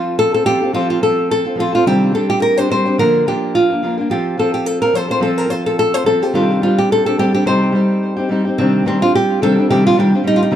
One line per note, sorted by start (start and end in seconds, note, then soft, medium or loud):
0.00 0.32 F3 medium
0.00 0.34 C4 medium
0.00 0.18 F4 medium
0.00 0.32 F4 medium
0.00 0.30 A4 medium
0.19 0.32 A4 loud
0.31 0.45 C4 soft
0.31 0.46 F4 soft
0.31 0.44 A4 soft
0.31 0.46 A4 medium
0.44 0.60 F3 medium
0.44 0.61 C4 medium
0.44 0.61 F4 medium
0.44 0.74 G4 loud
0.44 0.59 A4 medium
0.61 0.73 C4 soft
0.61 0.74 F4 soft
0.61 0.73 A4 medium
0.73 1.00 F3 medium
0.73 1.02 C4 medium
0.73 0.89 F4 medium
0.73 1.02 F4 medium
0.73 1.02 A4 medium
0.90 1.02 F4 medium
1.01 1.45 F3 medium
1.01 1.46 C4 medium
1.01 1.45 F4 medium
1.01 1.30 A4 medium
1.01 1.43 A4 medium
1.31 1.59 A4 loud
1.44 1.56 C4 soft
1.44 1.57 F4 soft
1.44 1.57 A4 medium
1.55 1.72 F3 medium
1.55 1.73 C4 medium
1.55 1.73 F4 medium
1.55 1.71 A4 medium
1.60 1.73 F4 medium
1.72 1.85 C4 soft
1.72 1.86 F4 soft
1.72 1.86 F4 medium
1.72 1.85 A4 medium
1.85 2.14 C3 medium
1.85 2.14 D#3 medium
1.85 2.11 G3 medium
1.85 2.12 C4 medium
1.85 2.14 D4 medium
1.85 2.13 G4 loud
1.85 2.15 G4 medium
2.12 2.56 G3 medium
2.12 2.57 C4 medium
2.12 2.57 D4 medium
2.12 2.55 G4 medium
2.12 2.29 A4 medium
2.30 2.41 G4 medium
2.42 2.57 A#4 loud
2.56 2.68 G3 soft
2.56 2.69 C4 soft
2.56 2.70 D4 soft
2.56 2.69 G4 soft
2.56 2.70 C5 loud
2.69 2.85 G3 medium
2.69 2.85 C4 medium
2.69 2.85 D4 medium
2.69 2.84 G4 medium
2.69 2.99 C5 loud
2.85 2.99 G3 soft
2.85 2.99 C4 medium
2.85 2.98 D4 soft
2.85 2.98 G4 medium
2.98 3.26 D3 medium
2.98 3.26 F3 medium
2.98 3.26 A#3 medium
2.98 3.27 D4 medium
2.98 3.25 A#4 medium
2.98 3.27 A#4 medium
3.26 3.82 F3 medium
3.26 3.70 A#3 medium
3.26 3.71 D4 medium
3.26 3.56 G4 medium
3.26 3.69 A#4 medium
3.55 3.95 F4 medium
3.70 3.83 A#3 soft
3.70 3.83 D4 soft
3.70 3.82 A#4 soft
3.82 3.98 F3 soft
3.82 3.98 A#3 medium
3.82 3.98 D4 medium
3.82 3.96 A#4 medium
3.98 4.10 A#3 soft
3.98 4.11 D4 soft
3.98 4.10 A#4 medium
4.10 4.36 F3 medium
4.10 4.39 C4 medium
4.10 4.39 F4 medium
4.10 4.37 G4 medium
4.10 4.39 A4 medium
4.37 4.81 F3 medium
4.37 4.84 C4 medium
4.37 4.82 F4 medium
4.37 4.54 A4 medium
4.37 4.80 A4 medium
4.54 4.66 G4 medium
4.66 4.81 A4 loud
4.81 4.93 C4 soft
4.81 4.95 F4 soft
4.81 4.94 A4 soft
4.81 4.95 A#4 medium
4.93 5.09 F3 medium
4.93 5.10 C4 medium
4.93 5.09 F4 medium
4.93 5.07 A4 medium
4.93 5.10 C5 loud
5.08 5.20 C4 soft
5.08 5.20 F4 soft
5.08 5.21 A4 medium
5.08 5.22 C5 medium
5.20 5.47 F3 medium
5.20 5.50 C4 medium
5.20 5.50 F4 medium
5.20 5.50 A4 medium
5.20 5.38 A4 medium
5.38 5.50 A#4 medium
5.48 5.93 F3 soft
5.48 5.95 C4 medium
5.48 5.93 F4 medium
5.48 5.91 A4 medium
5.48 5.66 C5 medium
5.66 5.78 A4 medium
5.79 5.94 A4 loud
5.92 6.04 C4 soft
5.92 6.05 F4 soft
5.92 6.05 A4 soft
5.92 6.06 C5 medium
6.04 6.20 F3 medium
6.04 6.21 C4 medium
6.04 6.21 F4 medium
6.04 6.23 A4 medium
6.04 6.19 A4 medium
6.20 6.33 C4 soft
6.20 6.35 F4 soft
6.20 6.35 G4 medium
6.20 6.34 A4 medium
6.33 6.61 C3 medium
6.33 6.67 D#3 medium
6.33 6.61 G3 medium
6.33 6.63 C4 medium
6.33 6.63 D4 medium
6.33 6.61 F4 medium
6.33 6.65 G4 medium
6.62 7.08 G3 medium
6.62 7.07 C4 soft
6.62 7.05 D4 medium
6.62 6.78 F4 medium
6.62 7.05 G4 medium
6.78 6.90 G4 medium
6.92 7.05 A4 loud
7.05 7.17 G3 soft
7.05 7.18 C4 soft
7.05 7.19 D4 soft
7.05 7.18 G4 soft
7.05 7.19 A4 medium
7.18 7.33 G3 medium
7.18 7.34 C4 medium
7.18 7.33 D4 medium
7.18 7.33 G4 loud
7.18 7.31 G4 medium
7.32 7.45 G3 soft
7.32 7.45 C4 medium
7.32 7.46 D4 medium
7.32 7.45 G4 medium
7.32 7.46 G4 medium
7.45 7.74 C3 medium
7.45 7.72 G3 medium
7.45 7.74 C4 medium
7.45 7.74 D#4 medium
7.45 7.76 G4 medium
7.45 8.26 C5 medium
7.72 8.29 G3 medium
7.72 8.19 C4 medium
7.72 8.18 D#4 medium
7.76 8.16 G4 medium
8.16 8.30 C4 soft
8.16 8.30 D#4 medium
8.16 8.30 G4 medium
8.29 8.45 G3 medium
8.29 8.46 C4 medium
8.29 8.46 D#4 medium
8.29 8.44 G4 medium
8.45 8.59 C4 soft
8.45 8.59 D#4 soft
8.45 8.58 G4 medium
8.58 8.84 C3 medium
8.58 8.85 D#3 medium
8.58 8.86 G3 medium
8.58 8.86 C4 medium
8.58 8.85 C4 medium
8.58 8.87 D4 medium
8.58 8.87 G4 medium
8.85 9.01 C3 medium
8.85 9.01 D#3 medium
8.85 9.01 G3 medium
8.85 9.02 C4 medium
8.85 9.03 C4 medium
8.85 9.01 D4 medium
8.85 8.99 G4 medium
9.01 9.12 G3 soft
9.01 9.13 C4 soft
9.01 9.14 D4 soft
9.01 9.13 F4 medium
9.01 9.13 G4 soft
9.13 9.42 G3 medium
9.13 9.42 C4 medium
9.13 9.43 D4 medium
9.13 9.43 G4 loud
9.13 9.43 G4 medium
9.42 9.57 C3 medium
9.42 9.57 D#3 medium
9.42 9.57 G3 medium
9.42 9.58 C4 medium
9.42 9.57 D4 medium
9.42 9.55 G4 medium
9.42 9.70 A4 loud
9.57 9.69 G3 medium
9.57 9.70 C4 medium
9.57 9.70 D4 medium
9.57 9.69 G4 medium
9.69 9.96 C3 medium
9.69 9.96 D#3 medium
9.69 9.96 G3 medium
9.69 9.97 C4 medium
9.69 9.98 D4 medium
9.69 9.86 G4 medium
9.69 9.98 G4 medium
9.87 9.99 F4 medium
9.97 10.13 C3 medium
9.97 10.13 D#3 medium
9.97 10.13 G3 medium
9.97 10.13 C4 medium
9.97 10.12 D4 medium
9.97 10.11 G4 medium
9.97 10.25 G4 medium
10.12 10.23 G3 soft
10.12 10.24 C4 soft
10.12 10.25 D4 soft
10.12 10.25 G4 medium
10.24 10.50 G3 medium
10.24 10.51 C4 soft
10.24 10.53 D4 medium
10.24 10.38 D#4 loud
10.24 10.52 G4 medium
10.36 10.41 F4 medium
10.43 10.54 D#4 medium
10.51 10.55 C3 medium
10.51 10.55 D#3 medium
10.51 10.55 G3 medium
10.51 10.55 C4 medium